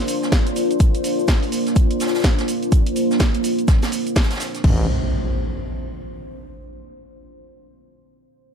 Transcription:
0.00 4.60 A#3 medium
0.00 4.60 D4 medium
0.00 4.60 F4 medium
0.00 4.60 C5 loud
0.08 open hi-hat loud
0.08 shaker medium
0.23 snare medium
0.23 shaker soft
0.32 kick loud
0.32 snare loud
0.32 closed hi-hat medium
0.32 shaker medium
0.32 shaker soft
0.47 closed hi-hat medium
0.47 shaker soft
0.56 open hi-hat loud
0.56 shaker medium
0.71 closed hi-hat soft
0.71 shaker soft
0.80 kick loud
0.80 closed hi-hat medium
0.80 shaker medium
0.80 shaker soft
0.95 closed hi-hat medium
0.95 shaker soft
1.04 open hi-hat loud
1.04 shaker medium
1.19 shaker soft
1.28 kick medium
1.28 snare loud
1.28 closed hi-hat medium
1.28 shaker loud
1.28 shaker soft
1.43 open hi-hat medium
1.43 shaker soft
1.52 open hi-hat loud
1.52 shaker medium
1.67 snare soft
1.67 closed hi-hat soft
1.67 shaker soft
1.76 kick loud
1.76 closed hi-hat medium
1.76 shaker medium
1.76 shaker soft
1.91 closed hi-hat medium
1.91 shaker soft
2.00 snare medium
2.00 open hi-hat medium
2.00 shaker medium
2.07 snare loud
2.07 shaker medium
2.14 snare medium
2.14 shaker medium
2.14 shaker soft
2.19 snare medium
2.19 shaker medium
2.24 kick loud
2.24 snare loud
2.24 closed hi-hat medium
2.24 shaker soft
2.39 snare medium
2.39 closed hi-hat medium
2.39 shaker soft
2.48 open hi-hat medium
2.48 shaker medium
2.62 closed hi-hat soft
2.62 shaker soft
2.72 kick loud
2.72 closed hi-hat medium
2.72 shaker medium
2.72 shaker soft
2.86 closed hi-hat medium
2.86 shaker soft
2.96 open hi-hat medium
2.96 shaker medium
3.11 snare medium
3.11 shaker soft
3.20 kick loud
3.20 snare loud
3.20 closed hi-hat medium
3.20 shaker medium
3.20 shaker soft
3.35 closed hi-hat medium
3.35 shaker soft
3.44 open hi-hat loud
3.44 shaker medium
3.59 closed hi-hat soft
3.59 shaker soft
3.68 kick loud
3.68 snare medium
3.68 closed hi-hat medium
3.68 shaker medium
3.68 shaker soft
3.83 snare soft
3.83 snare loud
3.83 open hi-hat medium
3.83 shaker medium
3.83 shaker soft
3.92 open hi-hat loud
3.92 shaker medium
4.07 closed hi-hat soft
4.07 shaker soft
4.15 kick loud
4.15 snare medium
4.15 snare loud
4.15 closed hi-hat medium
4.15 shaker medium
4.23 snare medium
4.23 shaker medium
4.30 snare medium
4.30 closed hi-hat medium
4.30 shaker medium
4.30 shaker soft
4.34 snare medium
4.34 shaker medium
4.40 snare loud
4.40 open hi-hat medium
4.40 shaker medium
4.55 snare soft
4.55 closed hi-hat soft
4.55 shaker soft
4.64 4.86 A1 loud
4.64 kick loud
4.64 crash medium
4.64 impact medium

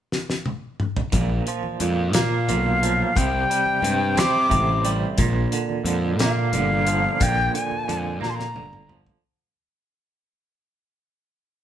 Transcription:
0.12 snare medium
0.30 snare medium
0.46 high tom medium
0.80 mid tom medium
0.96 floor tom loud
1.12 1.39 A#1 medium
1.12 1.80 A#2 medium
1.12 kick loud
1.12 closed hi-hat medium
1.12 high conga loud
1.12 low conga medium
1.47 2.81 F3 medium
1.47 closed hi-hat medium
1.63 low conga medium
1.80 2.14 F2 medium
1.80 2.48 A#2 medium
1.80 closed hi-hat medium
1.80 high conga loud
2.13 2.50 A#2 medium
2.13 3.16 A#3 medium
2.13 3.18 F5 medium
2.13 snare loud
2.13 closed hi-hat loud
2.13 low conga medium
2.31 low conga soft
2.48 3.01 B1 medium
2.48 3.16 A#2 medium
2.48 closed hi-hat medium
2.48 high conga medium
2.48 low conga soft
2.65 low conga medium
2.82 3.16 F3 medium
2.82 closed hi-hat medium
3.16 3.43 C2 medium
3.16 3.82 C3 medium
3.16 4.20 G5 loud
3.16 kick loud
3.16 closed hi-hat medium
3.16 high conga medium
3.16 low conga medium
3.50 4.84 G3 medium
3.50 closed hi-hat medium
3.66 low conga medium
3.82 4.19 G2 medium
3.82 4.49 C3 medium
3.82 closed hi-hat medium
3.82 high conga medium
3.99 low conga soft
4.16 4.53 C3 loud
4.16 5.19 C4 medium
4.16 4.94 D6 medium
4.16 snare loud
4.16 closed hi-hat medium
4.16 low conga loud
4.32 low conga soft
4.49 5.04 A1 medium
4.49 5.18 C3 medium
4.49 kick medium
4.49 closed hi-hat medium
4.49 high conga medium
4.49 low conga soft
4.66 low conga medium
4.85 5.19 G3 medium
4.85 closed hi-hat medium
5.18 5.45 A#1 medium
5.18 7.21 A#2 medium
5.18 kick loud
5.18 closed hi-hat medium
5.18 high conga medium
5.18 low conga medium
5.52 5.85 D3 medium
5.52 closed hi-hat medium
5.69 low conga medium
5.84 6.19 F2 medium
5.84 6.53 D3 medium
5.84 closed hi-hat medium
5.84 high conga medium
6.19 6.54 A#2 loud
6.19 7.89 A#3 medium
6.19 snare loud
6.19 closed hi-hat medium
6.19 low conga loud
6.23 7.24 F5 medium
6.38 low conga soft
6.53 7.06 G1 medium
6.53 7.53 D3 medium
6.53 closed hi-hat medium
6.53 high conga medium
6.53 low conga soft
6.70 low conga medium
6.87 8.56 F3 medium
6.87 closed hi-hat medium
7.20 7.47 A#1 medium
7.20 8.90 A#2 medium
7.20 7.55 G5 loud
7.20 kick loud
7.20 closed hi-hat medium
7.20 high conga medium
7.20 low conga medium
7.54 7.87 D3 medium
7.54 8.19 G#5 loud
7.54 closed hi-hat medium
7.54 low conga soft
7.71 low conga medium
7.88 8.23 F2 medium
7.88 8.54 D3 medium
7.88 closed hi-hat medium
7.88 high conga medium
7.88 low conga soft
8.21 8.57 A#2 loud
8.21 9.23 A#3 medium
8.21 8.31 A#5 medium
8.21 snare medium
8.21 low conga loud
8.29 8.37 C6 medium
8.36 8.98 A#5 loud
8.36 snare medium
8.54 9.08 G1 medium
8.54 9.23 D3 medium
8.54 high tom medium
8.54 high conga medium
8.73 mid tom medium
8.73 low conga medium
8.89 9.23 F3 medium
8.89 mid tom medium
9.06 floor tom medium

